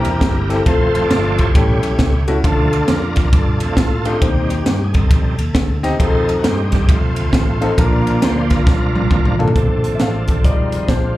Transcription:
Already playing: C3 E3 A#3 C4 D4 E4 G4 A#4
0.05 E2, ride bell
0.21 G1 E4 G4 A#4, kick, snare, ride bell
0.50 C4 E4 G4 A4, snare, ride bell
0.66 F1 F3 A3 C4 F4 A4 C5, kick, ride bell
0.95 ride bell
1.02 F4 A4 D5
1.10 G1, snare, ride bell
1.38 E4 G4 C#5, kick, ride bell
1.54 A1 A2 G3 A3 B3 C#4 E4 G4, kick, ride bell
1.83 B1, ride bell
1.99 C#2, kick, snare, ride bell
2.28 A3 C#4 E4 F#4, ride bell
2.44 D2 D3 F3 A3 D4 F4 A4, kick, ride bell
2.73 ride bell
2.88 F2 A#4, snare, ride bell
3.16 A#4, kick, snare, ride bell
3.33 G2 D4 F4 A4, kick, ride bell
3.60 F2 F3 A3 D4, ride bell
3.77 A2 A4, kick, snare, ride bell
4.05 A3 C4 D4 D#4 F4 G4 A4, ride bell
4.21 D#2 D#3 G3 C4 D#4 G4 C5, kick, ride bell
4.50 ride bell
4.58 G4
4.66 G2, snare, ride bell
4.84 G#4
4.94 C4 D#4 A4, kick, ride bell
5.11 F2 G3 C4 D#4, kick, ride bell
5.39 D#2, ride bell
5.55 D2, kick, snare, ride bell
5.83 C4 D#4 G4 D#5, snare, ride bell
5.99 F2 C4 D#4 F4 G#4 A4 C5, kick, ride bell
6.05 A4
6.29 A4, ride bell
6.39 F#4
6.44 G2 C4 D#4 G4, snare, ride bell
6.72 G3 A3 D#4, kick, snare, ride bell
6.89 F2 A3 C4 F4, kick, ride bell
7.16 D2, ride bell
7.33 A1, kick, snare, ride bell
7.61 C4 D#4 F4 A4, ride bell
7.77 A#1 A#2 F3 A#3 D4 F4 A#4, kick, ride bell
8.07 ride bell
8.22 D2 C5, snare, ride bell
8.50 D4 F4 A#4, kick, snare, ride bell
8.67 C2, kick, snare
8.95 A#1, high tom
9.11 A1, kick, mid tom
9.25 mid tom
9.39 A#3 D4 F4 A4, floor tom
9.48 floor tom
9.55 A#1 F3 A3 C4 D4 A4, kick, closed hi-hat
9.84 closed hi-hat
9.95 E5
10.00 A1 F5, snare, closed hi-hat
10.28 kick, closed hi-hat
10.45 F1 D#3 G3 G#3 D#4 F4 C5 D5, kick, closed hi-hat
10.72 closed hi-hat
10.88 A#1 G#3 C4 D4 A#4 C5, kick, snare, closed hi-hat

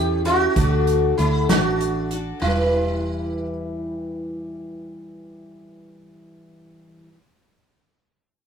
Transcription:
Already playing: E2 A2 E3 A3 C#4 E4 G4 A4
0.25 A3 C#4 E4 F#4 A4, closed hi-hat
0.56 D2 D3 A3 D4 F#4 A4, kick, closed hi-hat
0.87 closed hi-hat
1.18 D2 A3 D4 E4 F#4 A4, closed hi-hat
1.49 A1 D3 A3 D4 F#4 A4, snare, closed hi-hat
1.81 closed hi-hat
2.11 D4 F#4 A4, closed hi-hat
2.40 E1 E3 G3 E4
2.44 E4 G4 B4

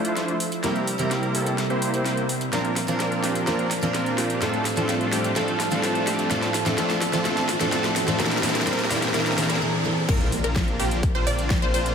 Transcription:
Already playing: F3 A3 D4 E4 F4 A4 C5 E5, riser
0.05 closed hi-hat
0.17 A3 D4 E4 F4 C5, snare, closed hi-hat
0.28 closed hi-hat
0.40 open hi-hat
0.52 closed hi-hat
0.63 C3 G3 A#3 C4 E4 G4 A#4, snare, closed hi-hat
0.76 closed hi-hat
0.87 open hi-hat
0.98 C3 G3 A#3 C4 E4 G4 A#4, closed hi-hat
1.11 snare, closed hi-hat
1.23 closed hi-hat
1.35 A#3 C4 E4 G4 A4, open hi-hat
1.46 closed hi-hat
1.58 snare, closed hi-hat
1.70 A#3 C4 E4 G4 C5, closed hi-hat
1.82 open hi-hat
1.94 closed hi-hat
2.06 A#3 C4 E4 G4 C5, snare, open hi-hat
2.17 closed hi-hat
2.29 open hi-hat
2.41 closed hi-hat
2.52 A#2 F3 A#3 C4 D4 F4 A#4 D5, snare, closed hi-hat
2.65 closed hi-hat
2.76 snare, open hi-hat
2.87 A#2 F3 A#3 C4 D4 F4 A#4, closed hi-hat
3.00 snare, closed hi-hat
3.12 closed hi-hat
3.24 A#3 C4 D4 F4 G4, snare, open hi-hat
3.35 closed hi-hat
3.46 A#2 F3 A#3 C4 D4 F4 A#4, snare, closed hi-hat
3.59 closed hi-hat
3.71 snare, open hi-hat
3.81 A#2 F3 A#3 C4 D4 F4 A#4, closed hi-hat
3.94 snare, closed hi-hat
4.06 closed hi-hat
4.18 A#3 C4 D4 F4 G4, snare, open hi-hat
4.30 closed hi-hat
4.41 A2 F3 G3 A3 C4 D4 F4 A4 F5, snare, closed hi-hat
4.54 closed hi-hat
4.65 snare, open hi-hat
4.76 A2 F3 A3 C4 D4 F4 A4, closed hi-hat
4.89 snare, closed hi-hat
5.01 closed hi-hat
5.12 A3 C4 D4 F4 G4, snare, open hi-hat
5.24 closed hi-hat
5.35 A2 F3 A3 C4 D4 F4 A4, snare, closed hi-hat
5.48 closed hi-hat
5.60 snare, open hi-hat
5.70 A2 F3 A3 C4 D4 F4 A4, closed hi-hat
5.83 snare, open hi-hat
5.95 closed hi-hat
6.07 A3 C4 D4 F4 G4, snare, open hi-hat
6.19 closed hi-hat
6.30 A2 F3 A3 C4 D4 F4 A4 E5, snare, closed hi-hat
6.43 snare, closed hi-hat
6.54 snare, open hi-hat
6.65 A2 F3 A3 C4 D4 F4 A4, snare, closed hi-hat
6.77 A2 F3 A3 C4 D4 F4 A4, snare, closed hi-hat
6.90 snare, closed hi-hat
7.02 snare, open hi-hat
7.12 A2 F3 A3 C4 D4 F4 A4, snare, closed hi-hat
7.24 A2 F3 A3 C4 D4 F4 A4, snare, closed hi-hat
7.37 snare, closed hi-hat
7.49 snare, open hi-hat
7.59 A2 F3 A3 C4 D4 F4 A4, snare, closed hi-hat
7.72 A2 F3 A3 C4 D4 F4 A4, snare, closed hi-hat
7.84 snare, closed hi-hat
7.96 snare, open hi-hat
8.07 A2 F3 A3 C4 D4 F4 A4, snare, closed hi-hat
8.19 A#2 E3 G3 A#3 C4 D4 E4 A#4, snare, closed hi-hat
8.26 snare
8.31 snare, closed hi-hat
8.37 snare
8.42 A#2 E3 A#3 C4 D4 E4 A#4, snare, open hi-hat
8.49 snare
8.55 snare, closed hi-hat
8.61 snare
8.66 A#2 E3 A#3 C4 D4 E4 A#4, snare, closed hi-hat
8.73 snare
8.79 snare, closed hi-hat
8.85 snare
8.90 A#2 E3 A#3 C4 D4 E4 A#4, snare, open hi-hat
8.96 snare
9.02 snare, closed hi-hat
9.08 snare
9.13 A#2 E3 A#3 C4 D4 E4 A#4, snare, closed hi-hat
9.20 snare
9.26 snare, closed hi-hat
9.32 snare
9.37 A#2 E3 A#3 C4 D4 E4 A#4, snare, open hi-hat
9.44 snare
9.50 snare, closed hi-hat
9.56 snare
9.61 A#2 E3 C4 D4 A#4
9.84 A#2 E3 C4 D4 A#4
10.09 A#1 D3 A#3 C4 D4 F4 A#4, kick, closed hi-hat, crash, impact
10.21 closed hi-hat
10.32 open hi-hat
10.44 A#1 A#3 C4 D4 F4 A#4, closed hi-hat
10.56 kick, snare, closed hi-hat
10.68 closed hi-hat
10.79 A#1 A#3 C4 D4 F4 G4, open hi-hat
10.91 closed hi-hat
11.03 kick, closed hi-hat
11.15 A#1 A#3 C4 D4 F4 C5, closed hi-hat
11.27 A#1 A#3 C4 D4 F4 D5, open hi-hat
11.39 closed hi-hat
11.50 kick, snare, closed hi-hat
11.62 A#1 A#3 C4 D4 F4 C5, closed hi-hat
11.74 A#1 A#3 C4 D4 F4 C5, open hi-hat
11.86 closed hi-hat

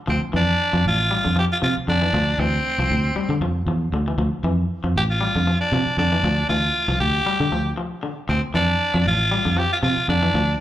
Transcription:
0.07 D2 F3 C4
0.33 F2 E3 D4
0.73 F2 F3
0.86 A1 F4
1.11 G3
1.24 F2 D3
1.36 F3 G4
1.52 F4
1.62 C3 F3 F4
1.77 muted fingered electric bass stroke
1.88 F2 D3 D4
2.02 E3
2.13 D2 F3
2.38 D2 E3 C4
2.78 C2 F3
2.91 D2
3.16 G3, muted fingered electric bass stroke
3.29 D3
3.40 F2 F3
3.66 E2 F3
3.93 D2 D3
4.08 E3
4.18 D2 F3
4.43 F2 E3
4.84 F2 F3
4.96 A1 G4
5.11 F4
5.21 G3
5.35 F2 D3
5.47 F3
5.61 D4
5.72 C3 F3
5.86 muted fingered electric bass stroke
5.97 F2 D3 D4
6.12 E3
6.23 D2 F3
6.49 D2 E3 F4
6.88 C2 F3
7.00 D2 G4
7.26 G3, muted fingered electric bass stroke
7.40 D3
7.51 D2 F3
7.78 F3
8.03 D3
8.29 D2 C4, muted clean electric guitar stroke
8.54 F2 E3 D4
8.94 F2 F3
9.06 A1 F4
9.31 G3
9.45 F2 D3
9.57 F3 G4
9.73 F4
9.83 C3 F3 F4
9.97 muted fingered electric bass stroke
10.08 F2 D3 D4
10.23 E3
10.34 D2 F3

